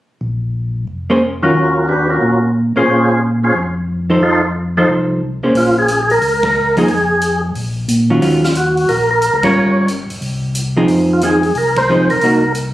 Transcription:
0.21 tonewheel organ A#1
0.87 tonewheel organ F1
1.10 hollow-body jazz guitar A#3 C#4 G#4 C5
1.42 hollow-body jazz guitar D#3 F#3 C#4 F4, tonewheel organ C#4 F4 F#4 A#4
1.54 tonewheel organ D#2
1.88 tonewheel organ D4 F#4 G4 B4
2.09 tonewheel organ C#4 F4 F#4 A#4
2.21 tonewheel organ A#2
2.76 tonewheel organ A#2 C#4 F4 G#4 C5, hollow-body jazz guitar A#3 C#4 G#4 C5
2.87 tonewheel organ A#2
3.43 tonewheel organ C#4 F4 G#4 C5
3.55 tonewheel organ F2
4.10 hollow-body jazz guitar F3 D#4 A4 C5
4.21 tonewheel organ F2 D#4 F4 A4 C5
4.77 hollow-body jazz guitar F3 D#4 A4 C5, tonewheel organ D#4 F4 A4 C5
4.88 tonewheel organ C2
5.43 tonewheel organ C2, hollow-body jazz guitar A#3 C#4 G#4 C5
5.55 tonewheel organ A#1 F4, open hi-hat
5.79 tonewheel organ G#4
5.88 closed hi-hat
6.03 tonewheel organ G#4
6.10 tonewheel organ A#4, open hi-hat
6.22 tonewheel organ C#2, open hi-hat
6.43 tonewheel organ A#4, kick, ride
6.77 hollow-body jazz guitar F3 A#3 D#4 G#4, tonewheel organ G#4, open hi-hat
6.88 tonewheel organ F2 G#4, open hi-hat
7.21 closed hi-hat
7.55 tonewheel organ A#1, open hi-hat
7.88 tonewheel organ A#2, closed hi-hat
8.10 hollow-body jazz guitar D#3 F#3 C#4 F4
8.21 tonewheel organ D#2, hollow-body jazz guitar D#3 F#3 C#4 F4, open hi-hat
8.44 tonewheel organ F4, snare
8.55 tonewheel organ F#4, closed hi-hat
8.77 open hi-hat
8.89 tonewheel organ A#1 A#4, open hi-hat
9.11 tonewheel organ A#4
9.22 closed hi-hat
9.33 tonewheel organ C#2 A#4
9.43 tonewheel organ G#1 C#5, hollow-body jazz guitar G3 C#4 F4 A#4, kick, ride
9.54 tonewheel organ G1
9.88 closed hi-hat
10.10 tonewheel organ G1, open hi-hat
10.21 tonewheel organ C2, open hi-hat
10.55 closed hi-hat
10.77 hollow-body jazz guitar F3 C4 D#4 G#4
10.88 tonewheel organ F2, open hi-hat
11.13 tonewheel organ F4
11.21 hollow-body jazz guitar F3 C4 D#4 G#4, tonewheel organ G#4, closed hi-hat
11.43 open hi-hat
11.55 tonewheel organ C2 A#4, open hi-hat
11.76 tonewheel organ C5, kick, ride
11.89 hollow-body jazz guitar F3 C4 D#4 G#4
12.10 tonewheel organ C2 A#4, open hi-hat
12.21 tonewheel organ C2, hollow-body jazz guitar A#3 D#4 F#4, open hi-hat
12.55 closed hi-hat

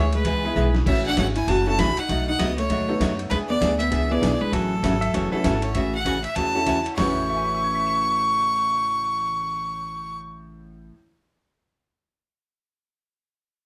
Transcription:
Already playing: upright bass D2, hollow-body jazz guitar G#3, fiddle C#5
0.13 hollow-body jazz guitar G#3, fiddle B4, ride
0.25 upright bass C#2, hollow-body jazz guitar E3 G#3 B3 E4 G#4, kick, ride
0.44 honky-tonk piano G#3 B3 E4 G#4 B4
0.55 upright bass B1, hollow-body jazz guitar E3 G#3 B3 E4 G#4, hi-hat pedal
0.75 snare
0.86 upright bass A1, hollow-body jazz guitar C#3 E3 A3 C#4 F#4, fiddle E5, kick, crash
1.06 hollow-body jazz guitar D4, fiddle F#5
1.17 upright bass G#1, hollow-body jazz guitar C#3 E3 A3 C#4 F#4, fiddle F#5, kick, snare, hi-hat pedal, ride
1.36 hollow-body jazz guitar E4, fiddle G#5, ride
1.47 upright bass F#1, hollow-body jazz guitar C#3 E3 A3 C#4 F#4, fiddle A5, kick, ride
1.66 honky-tonk piano A3 C#4 E4 F#4 A4, hollow-body jazz guitar F#4, fiddle A5
1.78 upright bass A1, hollow-body jazz guitar C#3 E3 A3 C#4 F#4, fiddle B5, kick, snare, hi-hat pedal, ride
1.97 hollow-body jazz guitar D#4, fiddle F#5, muted upright bass stroke, ride
2.09 upright bass B1, hollow-body jazz guitar B2 F#3 A3 D#4 F#4, kick, ride
2.27 hollow-body jazz guitar D#4, fiddle F#5
2.39 upright bass C#2, hollow-body jazz guitar B2 F#3 A3 B3 D#4 F#4, fiddle D#5, kick, snare, hi-hat pedal, ride
2.58 hollow-body jazz guitar A3, fiddle C#5, ride
2.70 upright bass D#2, hollow-body jazz guitar B2 F#3 A3 D#4 F#4, kick, ride
2.88 honky-tonk piano A3 B3 D#4 F#4 A4
3.00 upright bass F#2, hollow-body jazz guitar B2 F#3 A3 D#4 F#4, kick, snare, hi-hat pedal, ride
3.19 ride
3.30 upright bass E2, hollow-body jazz guitar E3 G#3 B3 D4 G#4, fiddle B4, kick, ride
3.48 hollow-body jazz guitar B3, fiddle D5
3.61 upright bass D2, hollow-body jazz guitar E3 B3 D4 G#4, kick, snare, hi-hat pedal, ride
3.79 hollow-body jazz guitar B3, fiddle E5, ride
3.90 upright bass C#2, hollow-body jazz guitar E3 B3 D4 G#4, kick, ride
4.10 honky-tonk piano G#3 B3 D4 E4 G#4, hollow-body jazz guitar B3, fiddle D5
4.21 upright bass B1, hollow-body jazz guitar E3 B3 D4 G#4, kick, snare, hi-hat pedal, ride
4.41 hollow-body jazz guitar G#3, fiddle B4, muted upright bass stroke
4.51 upright bass A1, hollow-body jazz guitar C#3 E3 F#3 A3 C#4 F#4, fiddle A4, kick, ride
4.83 upright bass G#1, hollow-body jazz guitar C#3 E3 A3 C#4 F#4, kick, snare, hi-hat pedal, ride
5.01 electric slide guitar E5, ride
5.13 upright bass F#1, hollow-body jazz guitar C#3 E3 A3 C#4 F#4, electric slide guitar C#5, kick, ride
5.32 honky-tonk piano A3 C#4 E4 F#4 A4, fiddle A4, electric slide guitar B4, muted upright bass stroke
5.43 upright bass G#1, hollow-body jazz guitar C#3 E3 A3 C#4 F#4, electric slide guitar A4, kick, snare, hi-hat pedal, ride
5.62 fiddle C#5, ride
5.75 upright bass A1, hollow-body jazz guitar C#3 E3 A3 C#4 F#4, fiddle E5, kick, ride
5.95 fiddle F#5
6.05 hollow-body jazz guitar C#3 E3 A3 C#4 F#4, kick, hi-hat pedal, ride
6.24 fiddle E5, ride
6.36 upright bass E2, hollow-body jazz guitar C#3 E3 A3 C#4 F#4, fiddle A5, kick, ride
6.55 honky-tonk piano C#4 E4 F#4 A4
6.66 hollow-body jazz guitar C#3 E3 A3 C#4 F#4, kick, hi-hat pedal, ride
6.86 ride
6.96 upright bass A1, honky-tonk piano A2 A3 C#4 F#4 B4, hollow-body jazz guitar A2 C#3 E3 A3 C#4, fiddle C#6, snare, floor tom, open hi-hat
7.01 hollow-body jazz guitar F#4
7.29 honky-tonk piano E5
7.36 honky-tonk piano G#5
7.45 honky-tonk piano B5
7.54 honky-tonk piano E6
7.64 honky-tonk piano G#6
7.75 honky-tonk piano B6
7.87 honky-tonk piano E7

